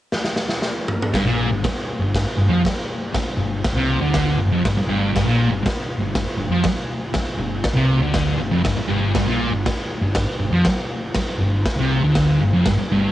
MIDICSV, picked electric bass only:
0, 0, Header, 1, 3, 480
1, 0, Start_track
1, 0, Key_signature, -2, "minor"
1, 0, Tempo, 502513
1, 1060, Time_signature, 4, 2, 24, 8
1, 12530, End_track
2, 0, Start_track
2, 0, Title_t, "Picked electric bass"
2, 0, Program_c, 0, 34
2, 1089, Note_on_c, 0, 31, 100
2, 1182, Note_off_c, 0, 31, 0
2, 1188, Note_on_c, 0, 34, 92
2, 1409, Note_off_c, 0, 34, 0
2, 1439, Note_on_c, 0, 31, 75
2, 1543, Note_off_c, 0, 31, 0
2, 1897, Note_on_c, 0, 31, 76
2, 2124, Note_off_c, 0, 31, 0
2, 2256, Note_on_c, 0, 31, 78
2, 2372, Note_off_c, 0, 31, 0
2, 2385, Note_on_c, 0, 41, 98
2, 2497, Note_off_c, 0, 41, 0
2, 3217, Note_on_c, 0, 31, 81
2, 3445, Note_off_c, 0, 31, 0
2, 3558, Note_on_c, 0, 36, 86
2, 3796, Note_off_c, 0, 36, 0
2, 3800, Note_on_c, 0, 38, 96
2, 4149, Note_off_c, 0, 38, 0
2, 4165, Note_on_c, 0, 31, 83
2, 4257, Note_off_c, 0, 31, 0
2, 4263, Note_on_c, 0, 29, 99
2, 4396, Note_off_c, 0, 29, 0
2, 4444, Note_on_c, 0, 31, 83
2, 4535, Note_off_c, 0, 31, 0
2, 4644, Note_on_c, 0, 31, 92
2, 4880, Note_off_c, 0, 31, 0
2, 4917, Note_on_c, 0, 31, 98
2, 4990, Note_off_c, 0, 31, 0
2, 4996, Note_on_c, 0, 34, 94
2, 5235, Note_off_c, 0, 34, 0
2, 5243, Note_on_c, 0, 31, 81
2, 5367, Note_off_c, 0, 31, 0
2, 5708, Note_on_c, 0, 31, 80
2, 5951, Note_off_c, 0, 31, 0
2, 6081, Note_on_c, 0, 31, 79
2, 6192, Note_off_c, 0, 31, 0
2, 6198, Note_on_c, 0, 41, 97
2, 6325, Note_off_c, 0, 41, 0
2, 7038, Note_on_c, 0, 31, 85
2, 7275, Note_off_c, 0, 31, 0
2, 7383, Note_on_c, 0, 36, 89
2, 7625, Note_off_c, 0, 36, 0
2, 7631, Note_on_c, 0, 38, 96
2, 7983, Note_off_c, 0, 38, 0
2, 8000, Note_on_c, 0, 31, 79
2, 8125, Note_off_c, 0, 31, 0
2, 8134, Note_on_c, 0, 29, 98
2, 8252, Note_off_c, 0, 29, 0
2, 8266, Note_on_c, 0, 31, 79
2, 8378, Note_off_c, 0, 31, 0
2, 8484, Note_on_c, 0, 31, 91
2, 8717, Note_off_c, 0, 31, 0
2, 8742, Note_on_c, 0, 31, 97
2, 8843, Note_off_c, 0, 31, 0
2, 8848, Note_on_c, 0, 34, 97
2, 9061, Note_off_c, 0, 34, 0
2, 9067, Note_on_c, 0, 31, 78
2, 9196, Note_off_c, 0, 31, 0
2, 9559, Note_on_c, 0, 31, 81
2, 9793, Note_off_c, 0, 31, 0
2, 9929, Note_on_c, 0, 31, 82
2, 10026, Note_off_c, 0, 31, 0
2, 10032, Note_on_c, 0, 41, 100
2, 10157, Note_off_c, 0, 41, 0
2, 10864, Note_on_c, 0, 31, 81
2, 11103, Note_off_c, 0, 31, 0
2, 11228, Note_on_c, 0, 36, 94
2, 11461, Note_off_c, 0, 36, 0
2, 11466, Note_on_c, 0, 38, 98
2, 11814, Note_off_c, 0, 38, 0
2, 11842, Note_on_c, 0, 31, 85
2, 11959, Note_off_c, 0, 31, 0
2, 11965, Note_on_c, 0, 29, 98
2, 12080, Note_off_c, 0, 29, 0
2, 12096, Note_on_c, 0, 31, 82
2, 12201, Note_off_c, 0, 31, 0
2, 12332, Note_on_c, 0, 31, 96
2, 12530, Note_off_c, 0, 31, 0
2, 12530, End_track
3, 0, Start_track
3, 0, Title_t, "Muted picked electric bass strokes"
3, 3006, Note_on_c, 9, 29, 42
3, 3102, Note_off_c, 9, 29, 0
3, 4541, Note_on_c, 9, 29, 41
3, 4636, Note_off_c, 9, 29, 0
3, 5399, Note_on_c, 9, 29, 42
3, 5495, Note_off_c, 9, 29, 0
3, 6821, Note_on_c, 9, 29, 42
3, 6917, Note_off_c, 9, 29, 0
3, 8387, Note_on_c, 9, 29, 40
3, 8482, Note_off_c, 9, 29, 0
3, 9225, Note_on_c, 9, 29, 41
3, 9321, Note_off_c, 9, 29, 0
3, 10660, Note_on_c, 9, 29, 42
3, 10755, Note_off_c, 9, 29, 0
3, 12207, Note_on_c, 9, 29, 41
3, 12303, Note_off_c, 9, 29, 0
3, 12530, End_track
0, 0, End_of_file